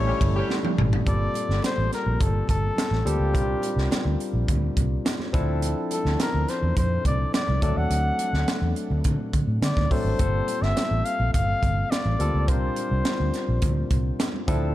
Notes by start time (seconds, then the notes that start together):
Already playing: A1 G3 A3 E4 A4 C#5
0.00 C#4
0.07 E3 C#4 G4
0.21 G1, kick, ride, muted conga
0.35 E3 C#4 G4
0.49 snare, high conga
0.63 high tom, high conga
0.77 G#1, mid tom, high conga
0.93 floor tom
1.06 G1 G3 A#3 C4 F4 A4 D5, kick, closed hi-hat, muted conga
1.34 closed hi-hat, muted conga
1.49 G1, snare
1.62 C5, snare, closed hi-hat, high conga
1.78 A1
1.93 A#4, snare, closed hi-hat
2.06 A#1, low conga
2.20 G1 A4, kick, closed hi-hat, muted conga
2.48 G1 A4, kick, closed hi-hat, low conga
2.76 snare, closed hi-hat, high conga
2.91 A1, snare, high conga
3.05 D2 G3 A#3 C4 F4 G4 A4, closed hi-hat
3.19 C#2
3.33 C2 G3 C4 D4 F4 A#4, kick, closed hi-hat, muted conga
3.62 closed hi-hat, muted conga
3.76 C2, snare
3.91 snare, closed hi-hat, high conga
4.05 D2
4.20 closed hi-hat
4.33 A#1
4.48 D2, kick, closed hi-hat, muted conga, low conga
4.77 C2, kick, closed hi-hat
5.05 snare, closed hi-hat, high conga
5.19 snare, high conga
5.33 D2 F3 C4 D4 E4 A4, kick, closed hi-hat
5.62 closed hi-hat, muted conga
5.91 A4, closed hi-hat, muted conga
6.05 D2, snare
6.20 A#4, snare, closed hi-hat, high conga
6.34 D2
6.48 C5, snare, closed hi-hat
6.63 E2, low conga
6.77 F2 C5, kick, closed hi-hat, muted conga
7.05 C2 D5, kick, closed hi-hat, muted conga, low conga
7.33 D5, snare, closed hi-hat, high conga
7.48 C2, high conga
7.62 D2 F#3 A3 C4 D4 A4 D5, kick, closed hi-hat
7.77 D#2 F#5
7.90 D2, closed hi-hat, muted conga
8.19 closed hi-hat, muted conga
8.33 D2, snare
8.48 snare, closed hi-hat, high conga
8.62 E2
8.76 closed hi-hat
8.90 D2, low conga
9.04 D3, kick, closed hi-hat, muted conga, low conga
9.33 D3, kick, closed hi-hat, muted conga
9.47 A2
9.61 D3 D5, snare, closed hi-hat, high conga
9.77 D2, kick, snare, high conga
9.90 F#3 A3 C4 D4 A4 C5, kick, open hi-hat, high conga
10.04 G#1
10.19 G1 G3 A#3 C4 F4 A4, kick, closed hi-hat, muted conga
10.48 closed hi-hat, muted conga
10.62 G1 E5, snare
10.77 snare, closed hi-hat, high conga
10.91 A1
11.05 F5, closed hi-hat
11.20 A#1, low conga
11.34 G1 F5, kick, closed hi-hat, muted conga
11.63 G1, kick, closed hi-hat, muted conga, low conga
11.90 D5, snare, closed hi-hat, high conga
12.05 A1, high conga
12.19 D2 G3 A#3 C4 F4 A4, closed hi-hat
12.34 C#2
12.47 C2 G3 C4 D4 F4 A#4 C5, kick, closed hi-hat, muted conga
12.76 closed hi-hat, muted conga
12.91 C2
13.05 snare, closed hi-hat, high conga
13.20 D2
13.34 snare, closed hi-hat
13.49 A#1
13.62 D2, kick, closed hi-hat, muted conga, low conga
13.91 C2, kick, closed hi-hat
14.19 snare, closed hi-hat, high conga
14.34 high conga
14.48 D2 F3 C4 D4 E4 A4, kick, closed hi-hat